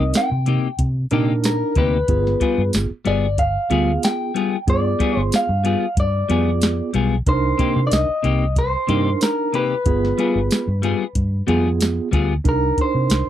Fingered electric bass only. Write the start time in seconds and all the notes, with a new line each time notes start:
0.00 C2
0.32 C3
0.79 C3
1.12 A#2
1.76 D2
2.09 G1
2.58 G2
2.74 G1
2.91 muted fingered electric bass stroke
3.06 G1
3.71 D2
4.68 G2
5.17 G1
5.49 G2
5.97 G2
6.30 F2
6.94 B1
7.27 C2
7.76 C3
7.92 C2
8.09 muted fingered electric bass stroke
8.24 C2
8.89 G2
9.86 G1
10.35 G1
10.68 G2
11.15 G2
11.48 F2
12.13 D2
12.45 C2
12.95 C3
13.10 C2